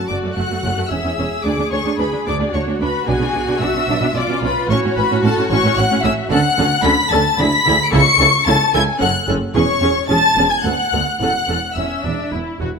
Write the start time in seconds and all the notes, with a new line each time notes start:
Already playing: F#4
0.07 F#1 F#2 A3 D5 D6
0.24 F#2 A3
0.35 F#1 F#2 A3 F#5 F#6
0.50 F#2 A3
0.63 F#1 F#2 A3
0.77 F#2 A3
0.89 E1 E2 C#4 G#4 E5 E6
1.03 E2 C#4
1.18 E1 E2 C#4
1.43 D2 D4 D5 D6
1.58 D2 D4
1.71 D2 D4 C#5 C#6
1.85 D2 D4
1.99 D2 D4 B4 B5
2.12 D2 D4
2.26 D2 D4 D5 D6
2.40 D2 D4
2.53 D2 D4 F#4 C#5 C#6
2.67 D2 D4
2.80 D2 D4 B4 B5
3.07 B1 B2 D4 G#4 G#5
3.20 B2 D4
3.34 B1 B2 D4
3.46 B2 D4
3.60 B1 B2 D4 E5 E6
3.74 B2 D4
3.87 B1 B2 D4
4.01 B2 D4
4.14 B1 B2 C#4 F4 D5 D6
4.28 B2 C#4
4.42 B1 B2 C#4 B4 B5
4.69 A1 A2 C#4 F#4 C#5 C#6
4.82 A2 C#4
4.95 A1 A2 C#4 B4 B5
5.10 A2 C#4
5.23 A1 A2 C#4 A4 A5
5.36 A2 C#4
5.49 A1 A2 C#4 C#5 C#6
5.63 A2 C#4
5.76 A1 A2 C#4 F#5 F#6
5.90 A2 C#4
6.03 A1 A2 C#4 E5 E6
6.30 D2 D3 C#4 A4 F#5 F#6
6.56 D2 D3 C#4 A4
6.83 D2 D3 C#4 A4 B5 B6
7.10 D2 D3 C#4 A4 A5 A6
7.38 D2 D3 E4 G#4 B5 B6
7.65 D2 D3 E4 G#4
7.85 D7
7.91 C#2 C#3 E4 A4 C#6 C#7
8.20 C#2 C#3 E4 A4
8.46 C#2 C#3 E4 A4 A5 A6
8.74 C#2 C#3 E4 A4 G#5 G#6
9.00 F#1 F#2 C#4 A4 F#5 F#6
9.28 F#1 F#2 C#4 A4
9.54 E1 E2 C#4 G#4 C#5 C#6
9.81 E1 E2 C#4 G#4
10.08 E1 E2 C#4 G#4 A5 A6
10.36 E1 E2 C#4 G#4
10.50 G#5 G#6
10.64 D2 B3 A4 F#5 F#6
10.92 D2 B3 A4
11.19 E1 E2 C#4 A4 F#5 F#6
11.48 E1 E2 C#4 A4
11.75 E1 E2 C#4 E5 E6
12.04 E1 E2 D4
12.32 E1 E2 E4
12.60 E1 E2 F#4